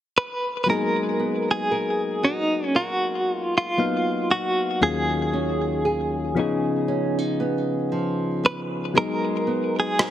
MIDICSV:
0, 0, Header, 1, 5, 480
1, 0, Start_track
1, 0, Tempo, 1034483
1, 316, Time_signature, 4, 2, 24, 8
1, 4688, End_track
2, 0, Start_track
2, 0, Title_t, "Clean electric guitar"
2, 0, Program_c, 0, 27
2, 82, Note_on_c, 0, 71, 83
2, 291, Note_off_c, 0, 71, 0
2, 296, Note_on_c, 0, 71, 70
2, 320, Note_off_c, 0, 71, 0
2, 324, Note_on_c, 0, 70, 99
2, 699, Note_off_c, 0, 70, 0
2, 701, Note_on_c, 0, 68, 86
2, 1042, Note_on_c, 0, 63, 79
2, 1049, Note_off_c, 0, 68, 0
2, 1237, Note_off_c, 0, 63, 0
2, 1237, Note_on_c, 0, 61, 79
2, 1281, Note_on_c, 0, 66, 84
2, 1286, Note_off_c, 0, 61, 0
2, 1550, Note_off_c, 0, 66, 0
2, 1550, Note_on_c, 0, 65, 84
2, 1657, Note_off_c, 0, 65, 0
2, 1659, Note_on_c, 0, 65, 83
2, 2000, Note_off_c, 0, 65, 0
2, 2002, Note_on_c, 0, 66, 77
2, 2239, Note_off_c, 0, 66, 0
2, 2241, Note_on_c, 0, 68, 86
2, 3659, Note_off_c, 0, 68, 0
2, 3925, Note_on_c, 0, 71, 90
2, 3988, Note_off_c, 0, 71, 0
2, 4165, Note_on_c, 0, 70, 103
2, 4521, Note_off_c, 0, 70, 0
2, 4545, Note_on_c, 0, 68, 92
2, 4688, Note_off_c, 0, 68, 0
2, 4688, End_track
3, 0, Start_track
3, 0, Title_t, "Nylon-string guitar"
3, 0, Program_c, 1, 24
3, 315, Note_on_c, 1, 56, 69
3, 318, Note_on_c, 1, 70, 59
3, 554, Note_on_c, 1, 59, 54
3, 793, Note_off_c, 1, 70, 0
3, 795, Note_on_c, 1, 70, 61
3, 1035, Note_on_c, 1, 66, 55
3, 1273, Note_off_c, 1, 70, 0
3, 1275, Note_on_c, 1, 70, 59
3, 1749, Note_off_c, 1, 59, 0
3, 1754, Note_on_c, 1, 59, 55
3, 1993, Note_off_c, 1, 66, 0
3, 1995, Note_on_c, 1, 66, 53
3, 2234, Note_on_c, 1, 51, 70
3, 2235, Note_off_c, 1, 56, 0
3, 2235, Note_off_c, 1, 70, 0
3, 2237, Note_on_c, 1, 68, 61
3, 2290, Note_off_c, 1, 59, 0
3, 2291, Note_off_c, 1, 66, 0
3, 2475, Note_on_c, 1, 61, 54
3, 2713, Note_off_c, 1, 68, 0
3, 2714, Note_on_c, 1, 68, 61
3, 2952, Note_off_c, 1, 51, 0
3, 2954, Note_on_c, 1, 49, 72
3, 3193, Note_off_c, 1, 61, 0
3, 3193, Note_on_c, 1, 61, 61
3, 3334, Note_off_c, 1, 61, 0
3, 3334, Note_on_c, 1, 63, 53
3, 3433, Note_on_c, 1, 59, 56
3, 3674, Note_on_c, 1, 53, 54
3, 3912, Note_off_c, 1, 59, 0
3, 3914, Note_on_c, 1, 59, 58
3, 4151, Note_off_c, 1, 53, 0
3, 4153, Note_on_c, 1, 56, 76
3, 4154, Note_off_c, 1, 68, 0
3, 4156, Note_on_c, 1, 70, 62
3, 4210, Note_off_c, 1, 49, 0
3, 4211, Note_off_c, 1, 63, 0
3, 4392, Note_off_c, 1, 59, 0
3, 4394, Note_on_c, 1, 59, 58
3, 4632, Note_off_c, 1, 70, 0
3, 4634, Note_on_c, 1, 70, 62
3, 4688, Note_off_c, 1, 56, 0
3, 4688, Note_off_c, 1, 59, 0
3, 4688, Note_off_c, 1, 70, 0
3, 4688, End_track
4, 0, Start_track
4, 0, Title_t, "Synth keys"
4, 0, Program_c, 2, 88
4, 306, Note_on_c, 2, 54, 59
4, 311, Note_on_c, 2, 58, 54
4, 317, Note_on_c, 2, 59, 56
4, 322, Note_on_c, 2, 63, 55
4, 328, Note_on_c, 2, 68, 69
4, 398, Control_c, 2, 64, 127
4, 1732, Note_off_c, 2, 54, 0
4, 1735, Note_off_c, 2, 58, 0
4, 1737, Note_off_c, 2, 59, 0
4, 1740, Note_off_c, 2, 63, 0
4, 1743, Note_off_c, 2, 68, 0
4, 1751, Note_on_c, 2, 54, 47
4, 1754, Note_on_c, 2, 58, 42
4, 1756, Note_on_c, 2, 59, 41
4, 1759, Note_on_c, 2, 63, 44
4, 1761, Note_on_c, 2, 77, 49
4, 2227, Note_off_c, 2, 54, 0
4, 2230, Note_off_c, 2, 58, 0
4, 2231, Note_on_c, 2, 39, 61
4, 2233, Note_on_c, 2, 54, 57
4, 2236, Note_off_c, 2, 59, 0
4, 2236, Note_on_c, 2, 58, 57
4, 2237, Note_off_c, 2, 63, 0
4, 2237, Note_on_c, 2, 61, 56
4, 2238, Note_off_c, 2, 77, 0
4, 2240, Note_on_c, 2, 65, 54
4, 2241, Control_c, 2, 64, 0
4, 2241, Note_on_c, 2, 68, 67
4, 2320, Control_c, 2, 64, 127
4, 2946, Note_on_c, 2, 53, 71
4, 2951, Note_off_c, 2, 61, 0
4, 2952, Note_on_c, 2, 59, 71
4, 2953, Note_off_c, 2, 39, 0
4, 2954, Note_off_c, 2, 54, 0
4, 2955, Note_off_c, 2, 58, 0
4, 2956, Note_on_c, 2, 61, 68
4, 2958, Note_off_c, 2, 65, 0
4, 2958, Note_off_c, 2, 68, 0
4, 2960, Control_c, 2, 64, 0
4, 2962, Note_on_c, 2, 63, 65
4, 2967, Note_on_c, 2, 68, 81
4, 3054, Control_c, 2, 64, 127
4, 4132, Note_off_c, 2, 53, 0
4, 4135, Note_off_c, 2, 59, 0
4, 4137, Note_off_c, 2, 61, 0
4, 4140, Note_off_c, 2, 63, 0
4, 4143, Note_off_c, 2, 68, 0
4, 4147, Note_on_c, 2, 54, 62
4, 4152, Note_on_c, 2, 56, 60
4, 4157, Note_on_c, 2, 59, 58
4, 4160, Control_c, 2, 64, 0
4, 4162, Note_on_c, 2, 63, 57
4, 4168, Note_on_c, 2, 68, 65
4, 4251, Control_c, 2, 64, 127
4, 4688, Note_off_c, 2, 54, 0
4, 4688, Note_off_c, 2, 56, 0
4, 4688, Note_off_c, 2, 59, 0
4, 4688, Note_off_c, 2, 63, 0
4, 4688, Note_off_c, 2, 68, 0
4, 4688, End_track
5, 0, Start_track
5, 0, Title_t, "Drums"
5, 4637, Note_on_c, 9, 37, 101
5, 4683, Note_off_c, 9, 37, 0
5, 4688, End_track
0, 0, End_of_file